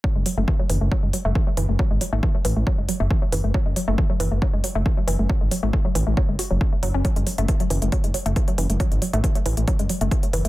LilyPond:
<<
  \new Staff \with { instrumentName = "Synth arpeggio sound" } { \clef bass \time 4/4 \key fis \minor \tempo 4 = 137 fis16 gis16 fis16 a16 e16 fis16 e16 a16 fis16 gis16 fis16 a16 e16 fis16 e16 a16 | fis16 gis16 fis16 a16 e16 fis16 e16 a16 fis16 gis16 fis16 a16 e16 fis16 e16 a16 | fis16 gis16 fis16 a16 e16 fis16 e16 a16 fis16 gis16 fis16 a16 e16 fis16 e16 a16 | fis16 gis16 fis16 a16 e16 fis16 e16 a16 fis16 gis16 fis'16 fis16 d'16 a16 fis16 cis'16 |
fis16 gis16 fis16 a16 e16 fis16 e16 a16 fis16 gis16 fis16 a16 e16 fis16 e16 a16 | fis16 gis16 fis16 a16 e16 fis16 e16 a16 fis16 gis16 fis16 a16 e16 fis16 e16 a16 | }
  \new Staff \with { instrumentName = "Detuned saw bass" } { \clef bass \time 4/4 \key fis \minor r16 fis,,16 r16 fis,,16 r8 fis,,16 fis,,16 r16 fis,,16 r16 fis,,16 r8 fis,,16 fis,,16 | r16 gis,,16 r16 gis,,16 r8 a,,16 a,,16 r16 fis,,16 r16 fis,,16 r8 fis,,16 fis,,16 | r16 fis,,16 r16 fis,,16 r8 fis,,16 fis,,16 r16 fis,,16 r16 fis,,16 r8 fis,,16 fis,,16 | r16 gis,,16 r16 gis,,16 r8 a,,16 a,,16 r16 fis,,16 r16 fis,,16 r8 fis,,16 fis,,16 |
r16 fis,,16 r16 fis,,16 r8 fis,,16 fis,,16 r16 fis,,16 r16 fis,,16 r8 fis,,16 fis,,16 | r16 gis,,16 r16 gis,,16 r8 a,,16 a,,16 r16 fis,,16 r16 fis,,16 r8 fis,,16 fis,,16 | }
  \new DrumStaff \with { instrumentName = "Drums" } \drummode { \time 4/4 bd8 hho8 bd8 hho8 bd8 hho8 bd8 hho8 | bd8 hho8 bd8 hho8 bd8 hho8 bd8 hho8 | bd8 hho8 bd8 hho8 bd8 hho8 bd8 hho8 | bd8 hho8 bd8 hho8 bd8 hho8 bd8 hho8 |
<hh bd>16 hh16 hho16 hh16 <hh bd>16 hh16 hho16 hh16 <hh bd>16 hh16 hho16 hh16 <hh bd>16 hh16 hho16 hh16 | <hh bd>16 hh16 hho16 hh16 <hh bd>16 hh16 hho16 hh16 <hh bd>16 hh16 hho16 hh16 <hh bd>16 hh16 hho16 hh16 | }
>>